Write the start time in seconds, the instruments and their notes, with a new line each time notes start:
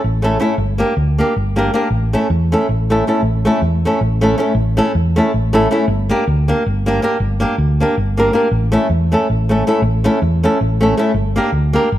0.04 fingered electric bass A1
0.22 nylon-string guitar A3 C#4 E4 A4
0.40 nylon-string guitar A3 C#4 E4 A4
0.58 fingered electric bass G1
0.78 nylon-string guitar A#3 D4 G4 A#4
0.97 fingered electric bass D2
1.18 nylon-string guitar A#3 D4 G4 A#4
1.36 fingered electric bass G1
1.56 nylon-string guitar A#3 D4 G4 A#4
1.74 nylon-string guitar A#3 D4 G4 A#4
1.90 fingered electric bass A1
2.13 nylon-string guitar A3 C#4 E4 A4
2.30 fingered electric bass E2
2.52 nylon-string guitar A3 C#4 E4 A4
2.69 fingered electric bass A1
2.90 nylon-string guitar A3 C#4 E4 A4
3.07 nylon-string guitar A3 C#4 E4 A4
3.23 fingered electric bass A1
3.45 nylon-string guitar A3 C#4 E4 A4
3.62 fingered electric bass E2
3.85 nylon-string guitar A3 C#4 E4 A4
4.01 fingered electric bass A1
4.21 nylon-string guitar A3 C#4 E4 A4
4.38 nylon-string guitar A3 C#4 E4 A4
4.55 fingered electric bass A1
4.77 nylon-string guitar A3 C#4 E4 A4
4.95 fingered electric bass E2
5.16 nylon-string guitar A3 C#4 E4 A4
5.34 fingered electric bass A1
5.53 nylon-string guitar A3 C#4 E4 A4
5.71 nylon-string guitar A3 C#4 E4 A4
5.88 fingered electric bass G1
6.09 nylon-string guitar A#3 D4 G4 A#4
6.28 fingered electric bass D2
6.48 nylon-string guitar A#3 D4 G4 A#4
6.66 fingered electric bass G1
6.86 nylon-string guitar A#3 D4 G4 A#4
7.02 nylon-string guitar A#3 D4 G4 A#4
7.20 fingered electric bass G1
7.40 nylon-string guitar A#3 D4 G4 A#4
7.58 fingered electric bass D2
7.80 nylon-string guitar A#3 D4 G4 A#4
7.98 fingered electric bass G1
8.17 nylon-string guitar A#3 D4 G4 A#4
8.33 nylon-string guitar A#3 D4 G4 A#4
8.51 fingered electric bass A1
8.72 nylon-string guitar A3 C#4 E4 A4
8.90 fingered electric bass E2
9.12 nylon-string guitar A3 C#4 E4 A4
9.30 fingered electric bass A1
9.49 nylon-string guitar A3 C#4 E4 A4
9.67 nylon-string guitar A3 C#4 E4 A4
9.82 fingered electric bass A1
10.04 nylon-string guitar A3 C#4 E4 A4
10.22 fingered electric bass E2
10.43 nylon-string guitar A3 C#4 E4 A4
10.61 fingered electric bass A1
10.81 nylon-string guitar A3 C#4 E4 A4
10.97 nylon-string guitar A3 C#4 E4 A4
11.14 fingered electric bass G1
11.36 nylon-string guitar A#3 D4 G4 A#4
11.52 fingered electric bass D2
11.73 nylon-string guitar A#3 D4 G4 A#4
11.92 fingered electric bass G1